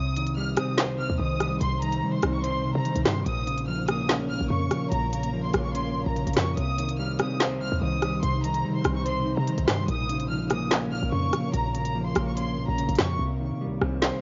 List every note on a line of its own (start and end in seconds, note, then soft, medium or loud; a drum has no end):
0.00 0.59 C2 loud
0.00 0.97 C3 loud
0.00 3.23 C3 medium
0.00 3.23 G3 medium
0.00 3.23 D#4 medium
0.00 3.23 C5 medium
0.00 0.34 D#6 loud
0.16 1.18 D#3 medium
0.16 closed hi-hat loud
0.27 closed hi-hat medium
0.37 1.39 G3 medium
0.37 0.54 F6 medium
0.57 0.85 C3 loud
0.57 1.61 C4 medium
0.57 0.74 D#6 medium
0.57 cross-stick loud
0.57 closed hi-hat medium
0.78 1.82 C5 loud
0.78 snare loud
0.78 clap loud
0.78 closed hi-hat medium
0.83 1.08 C2 loud
0.98 1.59 C3 medium
0.98 1.16 F6 medium
1.10 1.19 D#2 loud
1.19 1.59 C2 loud
1.19 1.80 D#3 medium
1.19 1.58 D#6 medium
1.40 2.02 G3 medium
1.40 cross-stick medium
1.40 closed hi-hat medium
1.60 2.04 C2 loud
1.60 2.63 C3 medium
1.60 1.78 C6 medium
1.60 closed hi-hat medium
1.81 2.84 D#3 medium
1.81 2.11 A#5 medium
1.81 closed hi-hat medium
1.92 closed hi-hat medium
2.02 2.22 D#3 loud
2.02 3.05 G3 medium
2.13 2.30 C6 medium
2.22 2.73 C2 loud
2.22 3.26 C4 medium
2.22 cross-stick loud
2.22 closed hi-hat medium
2.34 2.42 C#6 medium
2.43 3.26 C5 medium
2.43 2.73 C6 medium
2.43 closed hi-hat medium
2.64 3.26 C3 medium
2.75 2.95 C3 loud
2.75 3.04 A#5 medium
2.85 3.26 D#3 medium
2.85 closed hi-hat medium
2.96 3.05 C2 loud
2.96 closed hi-hat medium
3.05 3.25 G2 loud
3.05 3.26 G3 medium
3.05 3.23 C6 medium
3.05 cross-stick medium
3.05 snare loud
3.05 clap medium
3.05 closed hi-hat medium
3.26 4.37 A#1 loud
3.26 4.28 A#2 medium
3.26 6.54 A#3 medium
3.26 6.54 A#4 medium
3.26 6.54 C#5 medium
3.26 6.54 F5 medium
3.26 3.65 D#6 loud
3.26 closed hi-hat medium
3.47 4.49 C#3 medium
3.47 closed hi-hat medium
3.58 closed hi-hat medium
3.68 4.69 F3 medium
3.68 3.85 F6 medium
3.88 4.92 A#3 medium
3.88 4.05 D#6 medium
3.88 cross-stick loud
3.88 closed hi-hat medium
4.09 5.13 C#4 loud
4.09 snare loud
4.09 clap loud
4.09 closed hi-hat medium
4.29 4.90 A#2 medium
4.29 4.47 F6 medium
4.41 4.50 A#1 loud
4.50 4.70 F2 loud
4.50 5.11 C#3 medium
4.50 4.89 C#6 medium
4.71 5.32 F3 medium
4.71 cross-stick medium
4.71 closed hi-hat medium
4.91 5.51 A#1 loud
4.91 5.94 A#2 medium
4.91 5.09 A#5 medium
4.91 closed hi-hat medium
5.12 6.15 C#3 medium
5.12 5.42 A#5 medium
5.12 closed hi-hat medium
5.23 closed hi-hat medium
5.33 6.35 F3 loud
5.44 5.61 C6 medium
5.53 6.04 A#1 loud
5.53 6.57 A#3 medium
5.53 cross-stick loud
5.53 closed hi-hat medium
5.65 5.73 C#6 medium
5.74 6.57 C#4 loud
5.74 6.04 C6 medium
5.74 closed hi-hat medium
5.95 6.57 A#2 medium
6.06 6.26 A#1 loud
6.06 6.35 A#5 medium
6.16 6.57 C#3 medium
6.16 closed hi-hat medium
6.27 6.36 A#1 loud
6.27 closed hi-hat medium
6.33 6.57 F2 loud
6.33 6.57 F3 medium
6.33 6.54 C#6 medium
6.33 cross-stick medium
6.33 snare loud
6.33 closed hi-hat medium
6.33 open hi-hat medium
6.37 clap medium
6.37 closed hi-hat medium
6.57 7.21 C2 loud
6.57 9.85 C3 medium
6.57 7.59 C3 loud
6.57 9.85 G3 medium
6.57 9.85 D#4 medium
6.57 9.85 C5 medium
6.57 6.96 D#6 loud
6.57 closed hi-hat medium
6.78 7.80 D#3 medium
6.78 closed hi-hat medium
6.89 closed hi-hat medium
6.99 8.01 G3 medium
6.99 7.16 F6 medium
7.19 7.47 C3 loud
7.19 8.23 C4 medium
7.19 7.37 D#6 medium
7.19 cross-stick loud
7.19 closed hi-hat medium
7.40 8.44 C5 loud
7.40 snare loud
7.40 clap loud
7.40 closed hi-hat medium
7.46 7.70 C2 loud
7.60 8.21 C3 medium
7.60 7.78 F6 medium
7.72 7.81 D#2 loud
7.81 8.21 C2 loud
7.81 8.42 D#3 medium
7.81 8.20 D#6 medium
8.02 8.64 G3 medium
8.02 cross-stick medium
8.02 closed hi-hat medium
8.22 8.66 C2 loud
8.22 9.25 C3 loud
8.22 8.40 C6 loud
8.22 closed hi-hat medium
8.44 9.46 D#3 medium
8.44 8.73 A#5 medium
8.44 closed hi-hat medium
8.54 closed hi-hat medium
8.64 8.84 D#3 loud
8.64 9.67 G3 medium
8.75 8.92 C6 medium
8.84 9.35 C2 loud
8.84 9.88 C4 medium
8.84 cross-stick loud
8.84 closed hi-hat medium
8.96 9.04 C#6 medium
9.06 9.88 C5 loud
9.06 9.35 C6 medium
9.06 closed hi-hat medium
9.26 9.88 C3 medium
9.37 9.57 C3 loud
9.37 9.66 A#5 medium
9.47 9.89 D#3 medium
9.47 closed hi-hat medium
9.58 9.67 C2 loud
9.58 closed hi-hat medium
9.67 9.87 G2 loud
9.67 9.89 G3 medium
9.67 9.85 C6 medium
9.67 cross-stick medium
9.67 snare loud
9.67 clap medium
9.67 closed hi-hat medium
9.88 10.99 A#1 loud
9.88 10.90 A#2 medium
9.88 13.16 A#3 medium
9.88 13.16 A#4 medium
9.88 13.16 C#5 medium
9.88 13.16 F5 medium
9.88 10.27 D#6 loud
9.88 closed hi-hat medium
10.09 11.11 C#3 medium
10.09 closed hi-hat medium
10.20 closed hi-hat medium
10.30 11.31 F3 medium
10.30 10.47 F6 medium
10.50 11.54 A#3 medium
10.50 10.68 D#6 medium
10.50 cross-stick loud
10.50 closed hi-hat medium
10.71 11.75 C#4 loud
10.71 snare loud
10.71 clap loud
10.71 closed hi-hat medium
10.92 11.52 A#2 medium
10.92 11.09 F6 medium
11.03 11.12 A#1 loud
11.12 11.32 F2 loud
11.12 11.73 C#3 medium
11.12 11.51 C#6 medium
11.33 11.94 F3 medium
11.33 cross-stick medium
11.33 closed hi-hat medium
11.53 12.13 A#1 loud
11.53 12.56 A#2 medium
11.53 11.71 A#5 medium
11.53 closed hi-hat medium
11.75 12.77 C#3 medium
11.75 12.04 A#5 medium
11.75 closed hi-hat medium
11.85 closed hi-hat medium
11.95 12.98 F3 medium
12.06 12.23 C6 medium
12.15 12.66 A#1 loud
12.15 13.19 A#3 medium
12.15 cross-stick loud
12.15 closed hi-hat medium
12.27 12.35 C#6 medium
12.37 13.19 C#4 medium
12.37 12.66 C6 medium
12.37 closed hi-hat medium
12.57 13.19 A#2 medium
12.68 12.88 A#1 loud
12.68 12.97 A#5 medium
12.78 13.19 C#3 medium
12.78 closed hi-hat medium
12.89 12.98 A#1 loud
12.89 closed hi-hat medium
12.95 13.19 F2 loud
12.95 13.19 F3 medium
12.95 13.16 C#6 medium
12.95 cross-stick medium
12.95 snare loud
12.95 closed hi-hat medium
12.99 clap medium
12.99 closed hi-hat medium
13.19 13.53 C2 loud
13.19 14.21 C3 medium
13.40 14.21 D#3 medium
13.51 13.68 C3 loud
13.61 14.21 G3 medium
13.66 13.81 C2 loud
13.81 14.12 C2 loud
13.81 14.21 C4 medium
13.81 cross-stick loud
14.02 14.21 C5 loud
14.02 snare loud
14.02 clap medium